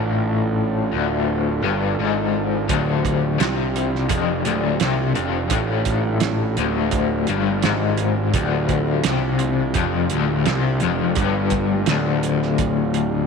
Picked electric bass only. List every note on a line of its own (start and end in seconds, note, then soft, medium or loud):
0.00 0.90 A1 medium
0.94 1.61 D1 medium
1.64 1.97 G1 loud
1.99 2.66 G#1 medium
2.69 3.37 D1 loud
3.40 4.07 C2 medium
4.10 4.43 F1 loud
4.46 4.79 D1 loud
4.81 5.14 C2 medium
5.17 5.50 F1 medium
5.51 6.54 A1 medium
6.57 7.25 D1 medium
7.30 7.62 G1 loud
7.65 8.32 G#1 medium
8.34 9.01 D1 loud
9.07 9.73 C2 loud
9.75 10.09 F1 loud
10.13 10.45 D1 loud
10.47 10.80 C2 medium
10.83 11.16 F1 medium
11.17 11.84 G1 medium
11.88 13.25 D1 medium